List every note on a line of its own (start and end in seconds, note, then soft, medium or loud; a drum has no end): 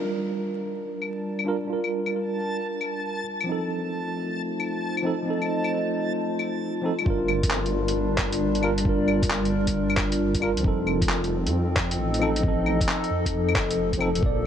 0.00 1.43 G3 medium
0.00 3.48 G3 medium
0.00 1.34 C4 medium
0.00 1.44 D4 medium
0.00 1.45 F4 medium
0.00 1.47 A#4 medium
0.00 3.48 A#4 medium
0.00 7.07 A5 medium
0.27 3.47 D4 medium
0.35 11.27 F4 medium
0.52 3.47 D5 medium
1.02 claves soft
1.39 claves medium
1.44 1.54 G3 medium
1.44 1.55 D4 medium
1.44 1.55 F4 medium
1.44 1.56 A#4 medium
1.65 3.22 G3 medium
1.65 3.23 D4 medium
1.70 3.24 F4 medium
1.70 3.26 A#4 medium
1.84 claves soft
2.06 claves soft
2.81 claves soft
3.41 5.01 F3 medium
3.41 claves medium
3.46 7.06 A3 medium
3.46 5.02 C4 medium
3.46 5.03 D#4 medium
3.52 5.05 A4 medium
3.62 7.06 D#4 medium
3.67 8.25 C5 medium
4.54 7.06 D#5 medium
4.60 claves soft
4.97 claves medium
5.02 5.12 F3 medium
5.02 5.13 C4 medium
5.02 5.13 D#4 medium
5.06 5.14 A4 medium
5.22 6.80 F3 medium
5.22 6.81 C4 medium
5.28 6.82 D#4 medium
5.28 6.84 A4 medium
5.42 claves soft
5.64 claves soft
6.39 claves soft
6.82 6.91 F3 medium
6.82 6.92 C4 medium
6.82 6.92 D#4 medium
6.86 6.93 A4 medium
6.99 8.59 G3 medium
6.99 claves medium
7.05 7.95 G1 loud
7.05 10.64 G3 medium
7.05 8.60 D4 medium
7.05 8.62 F4 medium
7.05 kick loud
7.10 8.63 A#4 medium
7.15 10.64 D4 medium
7.28 claves medium
7.43 kick loud
7.43 closed hi-hat medium
7.51 clap loud
7.66 closed hi-hat soft
7.88 10.64 D5 medium
7.88 closed hi-hat medium
7.95 8.62 G1 medium
8.18 kick loud
8.18 clap loud
8.33 closed hi-hat medium
8.39 10.64 A#4 medium
8.55 closed hi-hat soft
8.60 10.55 G1 medium
8.60 8.70 G3 medium
8.60 8.71 D4 medium
8.60 8.71 F4 medium
8.60 claves medium
8.64 8.72 A#4 loud
8.78 10.38 G3 medium
8.78 closed hi-hat medium
8.84 10.39 D4 medium
8.84 10.41 F4 medium
8.84 kick loud
8.89 10.42 A#4 medium
9.08 claves medium
9.23 kick loud
9.23 closed hi-hat medium
9.30 clap loud
9.45 closed hi-hat soft
9.67 kick medium
9.67 closed hi-hat medium
9.90 claves medium
9.97 kick loud
9.97 clap loud
9.97 claves medium
10.12 closed hi-hat medium
10.35 kick medium
10.35 closed hi-hat soft
10.40 10.49 G3 medium
10.40 10.50 D4 medium
10.40 10.50 F4 medium
10.40 10.51 A#4 loud
10.40 claves medium
10.57 10.64 C2 medium
10.57 12.17 F3 medium
10.57 closed hi-hat medium
10.62 11.48 F1 loud
10.62 14.46 F3 medium
10.62 12.18 C4 medium
10.62 12.19 D#4 medium
10.62 kick loud
10.68 12.21 A4 medium
10.74 14.46 C4 medium
10.87 claves medium
11.02 kick loud
11.02 closed hi-hat medium
11.09 clap loud
11.24 closed hi-hat soft
11.30 14.46 A4 medium
11.46 11.98 F2 loud
11.46 14.23 D#4 medium
11.46 14.22 D#5 medium
11.46 closed hi-hat medium
11.76 kick loud
11.76 clap loud
11.91 closed hi-hat medium
11.99 12.87 A1 medium
12.14 closed hi-hat soft
12.19 12.28 F3 medium
12.19 12.29 C4 medium
12.19 12.30 D#4 medium
12.19 12.30 A4 loud
12.19 claves medium
12.36 13.97 F3 medium
12.36 closed hi-hat medium
12.42 13.98 C4 medium
12.42 13.99 D#4 medium
12.42 kick loud
12.48 14.01 A4 medium
12.66 claves medium
12.81 kick loud
12.81 closed hi-hat medium
12.89 clap loud
13.04 closed hi-hat soft
13.11 13.57 F2 medium
13.26 kick medium
13.26 closed hi-hat medium
13.49 claves medium
13.55 14.13 F1 medium
13.55 kick loud
13.55 clap loud
13.55 claves medium
13.71 closed hi-hat medium
13.93 kick medium
13.93 closed hi-hat soft
13.98 14.07 F3 medium
13.98 14.08 C4 medium
13.98 14.09 D#4 medium
13.98 claves medium
14.02 14.10 A4 loud
14.15 14.22 F1 loud
14.15 14.46 A#2 medium
14.15 closed hi-hat medium
14.21 14.46 A#1 loud
14.21 14.46 A#3 medium
14.21 14.46 A4 medium
14.21 kick loud
14.26 14.46 D5 medium